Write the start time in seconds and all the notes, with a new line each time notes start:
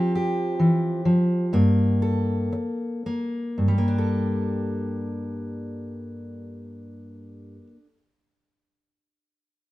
Already playing: F3 C4 G4
0.15 G4
0.59 E3
1.05 F3
1.53 G2 A#3
2.02 A4
2.52 muted steel-string acoustic guitar stroke
3.06 A#3
3.58 G2
3.68 G3
3.78 A#3
3.88 D4
3.98 A4